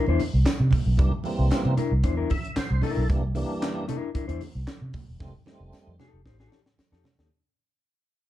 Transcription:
0.06 fingered electric bass E2, clean electric guitar D4 E4 C5, muted conga
0.19 open hi-hat, tambourine, high conga
0.34 fingered electric bass C2
0.45 snare, clap, closed hi-hat, tambourine, muted conga, high conga
0.60 fingered electric bass C3
0.71 kick, open hi-hat, tambourine, high conga, low conga
0.86 fingered electric bass B1
0.97 fingered electric bass C2, tonewheel organ E3 G3 A#3 D4, kick, closed hi-hat, tambourine, muted conga, low conga
1.24 tonewheel organ E3 G3 A#3 C4, open hi-hat, high conga
1.39 fingered electric bass C2
1.51 muted fingered electric bass stroke, snare, clap, closed hi-hat, tambourine, muted conga
1.65 fingered electric bass C3, muted conga
1.77 clean electric guitar D4 E4 A#4, closed hi-hat, tambourine, high conga, low conga
1.92 fingered electric bass C2
2.04 fingered electric bass E2, clean electric guitar D4 E4 C5, kick, closed hi-hat, muted conga
2.17 clean electric guitar D4 E4 A#4
2.30 tonewheel organ E5, kick, open hi-hat, tambourine, high conga
2.45 closed hi-hat
2.56 tonewheel organ C5, muted fingered electric bass stroke, snare, clap, closed hi-hat, tambourine, muted conga, high conga
2.69 fingered electric bass C2, muted conga
2.82 clean electric guitar D4 E4 A#4, tonewheel organ A4, open hi-hat, tambourine, high conga, low conga
2.97 fingered electric bass B1
3.08 fingered electric bass C2, tonewheel organ E3 G3 A#3 D4, kick, closed hi-hat, tambourine, muted conga, low conga
3.35 tonewheel organ E3 G3 A#3 D4, open hi-hat, high conga
3.62 snare, clap, closed hi-hat, tambourine, muted conga
3.88 clean electric guitar D4 E4 A#4, closed hi-hat, tambourine, high conga, low conga
4.15 clean electric guitar D4 E4 A#4, kick, closed hi-hat
4.28 fingered electric bass E2, clean electric guitar D4 E4 C5, closed hi-hat
4.41 open hi-hat, tambourine, high conga
4.55 fingered electric bass C2
4.67 snare, clap, closed hi-hat, tambourine, muted conga, high conga
4.81 fingered electric bass C3
4.93 kick, open hi-hat, tambourine, high conga, low conga
5.08 fingered electric bass E1
5.20 fingered electric bass F1, tonewheel organ D#3 G3 A3 C4, kick, snare, tambourine, low conga
5.46 tonewheel organ D#3 G3 A3 C4, snare, tambourine, high conga
5.60 fingered electric bass F1
5.72 muted fingered electric bass stroke, snare, tambourine, muted conga
5.87 fingered electric bass F2
5.99 clean electric guitar D#4 G4 A4, snare, tambourine, high conga, low conga
6.13 fingered electric bass F1
6.25 fingered electric bass A1, clean electric guitar D#4 G4 C5, kick, snare, muted conga
6.39 clean electric guitar D#4 G4 A4, snare, muted conga
6.52 snare, tambourine, high conga
6.66 snare
6.78 muted fingered electric bass stroke, snare, tambourine, high conga
6.91 fingered electric bass F2, clean electric guitar D#4 G4 A4, snare, muted conga
7.04 snare, tambourine, high conga, low conga
7.18 fingered electric bass D#2, clean electric guitar D#4 G4 A4, snare

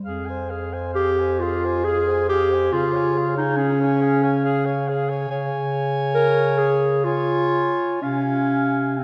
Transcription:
0.04 bass clarinet F2, alto saxophone G#4, soprano saxophone F5
0.26 alto saxophone C5, soprano saxophone G#5
0.50 alto saxophone G#4, soprano saxophone F5
0.73 alto saxophone C5, soprano saxophone G#5
0.93 clarinet G4, alto saxophone G#4, soprano saxophone F5
1.19 alto saxophone C5, soprano saxophone G#5
1.39 clarinet F4, alto saxophone G#4, soprano saxophone F5
1.64 alto saxophone C5, soprano saxophone G#5
1.85 clarinet G#4, alto saxophone G#4, soprano saxophone F5
2.08 alto saxophone C5, soprano saxophone G#5
2.29 clarinet G4, alto saxophone G#4
2.33 soprano saxophone F5
2.50 alto saxophone C5, soprano saxophone G#5
2.71 bass clarinet C#3, clarinet F4, alto saxophone G#4
2.76 soprano saxophone F5
2.92 alto saxophone C#5, soprano saxophone G#5
3.15 alto saxophone G#4, soprano saxophone F5
3.35 clarinet D#4, alto saxophone C#5
3.40 soprano saxophone G#5
3.56 clarinet C#4, alto saxophone G#4
3.61 soprano saxophone F5
3.81 alto saxophone C#5, soprano saxophone G#5
4.01 alto saxophone G#4, soprano saxophone F5
4.22 alto saxophone C#5, soprano saxophone G#5
4.45 alto saxophone G#4, soprano saxophone F5
4.65 alto saxophone C#5, soprano saxophone G#5
4.88 alto saxophone G#4, soprano saxophone F5
5.09 alto saxophone C#5, soprano saxophone G#5
5.29 bass clarinet C#3, alto saxophone C#5, soprano saxophone G#5
6.15 clarinet A#4
6.58 clarinet G#4
7.04 clarinet F4, alto saxophone C#5, soprano saxophone G#5
8.02 bass clarinet C3, clarinet C#4, alto saxophone F5, soprano saxophone G#5
8.97 clarinet C4, alto saxophone F5, soprano saxophone G#5

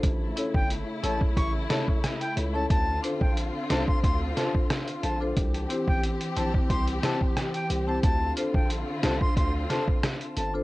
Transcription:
0.03 808-style bass A1, string section C#3 A3 E4, kick, closed hi-hat
0.36 marimba C#4 E4 A4 C#5, closed hi-hat
0.54 808-style bass G1, flute G5, kick
0.70 closed hi-hat
1.03 808-style bass A1, marimba C#4 E4 A4 C#5, flute A5, closed hi-hat
1.21 kick
1.37 808-style bass A1, flute C#6, kick, closed hi-hat
1.69 marimba C#4 E4 A4 C#5, flute A5, snare, closed hi-hat
1.88 kick
2.04 cross-stick, snare, closed hi-hat
2.21 flute G5, closed hi-hat
2.36 808-style bass C#2, marimba A4 C#5, closed hi-hat
2.54 marimba C#4 E4 A4 C#5, flute A5
2.70 808-style bass D2, string section D3 C4 F4, flute A5, kick, closed hi-hat
3.03 marimba D4 F4 A4 C5, closed hi-hat
3.21 808-style bass A#1, flute G5, kick
3.37 closed hi-hat
3.69 808-style bass C2, marimba D4 F4 A4 C5, flute A5, snare, closed hi-hat
3.88 flute C6, kick
4.03 808-style bass D2, flute C6, kick, closed hi-hat
4.36 marimba D4 F4 A4 C5, flute A5, snare, closed hi-hat
4.55 kick
4.70 cross-stick, snare, closed hi-hat
4.88 closed hi-hat
5.03 808-style bass A#1, marimba A4 C5, flute A5, closed hi-hat
5.20 marimba D4 F4 A4 C5
5.36 808-style bass C2, string section E3 C4 G4, kick, closed hi-hat
5.54 closed hi-hat
5.69 marimba C4 E4 G4 C5, closed hi-hat
5.88 808-style bass A1, flute G5, kick
6.03 closed hi-hat
6.21 closed hi-hat
6.36 808-style bass A#1, marimba C4 E4 G4 C5, flute A5, closed hi-hat
6.54 kick
6.70 808-style bass C2, flute C6, kick, closed hi-hat
6.88 closed hi-hat
7.03 marimba C4 E4 G4 C5, flute A5, snare, closed hi-hat
7.21 kick
7.37 cross-stick, snare, closed hi-hat
7.54 flute G5, closed hi-hat
7.69 808-style bass C2, marimba G4 C5, closed hi-hat
7.87 marimba C4 E4 G4 C5, flute A5
8.03 808-style bass D2, string section D3 C4 F4, flute A5, kick, closed hi-hat
8.36 marimba D4 F4 A4 C5, closed hi-hat
8.54 808-style bass A#1, flute G5, kick
8.70 closed hi-hat
9.03 808-style bass C2, marimba D4 F4 A4 C5, flute A5, snare, closed hi-hat
9.21 flute C6, kick
9.37 808-style bass D2, flute C6, kick, closed hi-hat
9.69 marimba D4 F4 A4 C5, flute A5, snare, closed hi-hat
9.88 kick
10.03 cross-stick, snare, closed hi-hat
10.21 closed hi-hat
10.36 808-style bass G1, marimba A4 C5, flute A5, closed hi-hat
10.54 marimba D4 F4 A4 C5

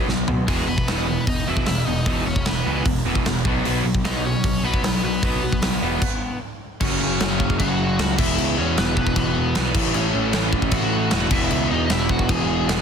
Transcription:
0.08 picked electric bass B1, overdriven electric guitar B2 F#3, snare
0.28 overdriven electric guitar B2 F#3, picked electric bass B2, floor tom
0.48 picked electric bass E1, overdriven electric guitar E2 B2 E3 G#3 G#4, kick, open hi-hat, splash
0.68 picked electric bass E1, overdriven electric guitar E2 B2 B3 B4
0.78 kick
0.88 picked electric bass E1, overdriven electric guitar E2 B2 E3, snare, open hi-hat
1.08 overdriven electric guitar E2 B2
1.27 picked electric bass E1, overdriven electric guitar E2 B2 D#4 D#5, kick, open hi-hat
1.47 picked electric bass E1, overdriven electric guitar E2 B2 E3 E4 E5
1.57 kick
1.66 picked electric bass E1, overdriven electric guitar E2 B2 E4 E5, snare, open hi-hat
1.85 picked electric bass E1, overdriven electric guitar E2 B2 D#4 D#5
2.06 picked electric bass E1, overdriven electric guitar E2 B2 E3, kick, open hi-hat
2.26 picked electric bass E1, overdriven electric guitar E2 B2 C#4 C#5
2.36 kick
2.45 picked electric bass E1, overdriven electric guitar E2 B2 B3 B4, snare, open hi-hat
2.65 picked electric bass C#2, overdriven electric guitar E2 B2 E3
2.85 picked electric bass E1, overdriven electric guitar E2 B2, kick, open hi-hat
3.05 picked electric bass E1, overdriven electric guitar E2 B2 E3
3.15 kick
3.26 picked electric bass E1, overdriven electric guitar E2 B2, snare, open hi-hat
3.45 picked electric bass B1, overdriven electric guitar B2 F#3 B3, kick
3.65 picked electric bass B1, overdriven electric guitar B2 F#3 B3, open hi-hat
3.84 picked electric bass B1, overdriven electric guitar B2 F#3
3.94 kick
4.04 picked electric bass B1, overdriven electric guitar B2 F#3 B3 D#4 D#5, snare, open hi-hat
4.24 overdriven electric guitar B2 F#3 C#4 C#5
4.44 picked electric bass B1, overdriven electric guitar B2 F#3, kick, open hi-hat
4.63 picked electric bass B1, overdriven electric guitar B2 F#3 B3 B4
4.74 kick
4.83 picked electric bass B1, overdriven electric guitar B2 F#3, snare, open hi-hat
5.03 picked electric bass B1, overdriven electric guitar B2 F#3 B3 B4
5.22 picked electric bass B1, overdriven electric guitar B2 F#3 B3, kick, open hi-hat
5.42 picked electric bass B1, overdriven electric guitar B2 F#3
5.52 kick
5.62 picked electric bass B1, overdriven electric guitar B2 F#3, snare, open hi-hat
5.82 picked electric bass E1, overdriven electric guitar B2 F#3 B3
6.02 kick, crash
6.81 picked electric bass F#1, overdriven electric guitar F#2 C#3 F#3 C#4 C#5, kick, crash
7.00 picked electric bass F#1
7.19 picked electric bass F#1, snare, crash
7.40 picked electric bass F#1, kick
7.50 kick
7.59 picked electric bass F#1, overdriven electric guitar F#4 F#5, kick, crash
7.99 picked electric bass C#2, snare, crash
8.18 picked electric bass E1, overdriven electric guitar E2 B2 E3 E4 E5, kick, crash
8.38 picked electric bass C#2, crash
8.58 picked electric bass E2, overdriven electric guitar C#4 C#5
8.77 picked electric bass E1, overdriven electric guitar B3 B4, snare, crash
8.97 picked electric bass E1, overdriven electric guitar B3 B4, kick
9.07 kick
9.16 picked electric bass E1, overdriven electric guitar B3 B4, kick, crash
9.37 picked electric bass E1
9.55 picked electric bass B1, overdriven electric guitar E2 B2 E3, snare, crash
9.73 picked electric bass A1, overdriven electric guitar A2 E3 A3, kick, crash
9.94 picked electric bass A1, overdriven electric guitar C#4 C#5, crash
10.14 picked electric bass A1
10.33 picked electric bass A1, snare, crash
10.53 picked electric bass A1, kick
10.62 kick
10.71 picked electric bass A1, overdriven electric guitar F#4 F#5, kick, crash
11.10 picked electric bass E1, overdriven electric guitar A2 E3 A3, snare, crash
11.31 picked electric bass E1, overdriven electric guitar E2 B2 E3 E4 E5, kick, crash
11.51 picked electric bass C#2, crash
11.71 picked electric bass E2, overdriven electric guitar D#4 D#5
11.86 overdriven electric guitar D#5, crash
11.90 picked electric bass E1, overdriven electric guitar E4 E5, snare
12.09 picked electric bass E1, overdriven electric guitar F#4 F#5, kick
12.19 kick
12.29 picked electric bass E1, overdriven electric guitar G#4 G#5, kick, crash
12.49 picked electric bass E1
12.68 picked electric bass E1, overdriven electric guitar E2 B2 E3, snare, crash

